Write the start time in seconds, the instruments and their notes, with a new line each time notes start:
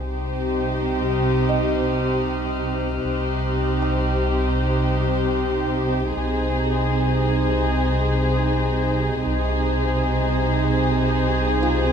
Already playing: sub bass C2, double bass section C2, cello section C3, viola section D#4, violin section G4 C5 D#6
0.71 violin section F6
1.49 music box D#5, violin section F#6
3.03 double bass section C2, sub bass C2, cello section C3, viola section D#4, violin section G4 C5
3.82 music box G5
6.15 double bass section C2, sub bass C2, cello section C3, viola section D#4, violin section G#4 C5
9.26 double bass section C2, sub bass C2, cello section C3, viola section D#4, violin section G#4 C5
11.63 music box F4 F5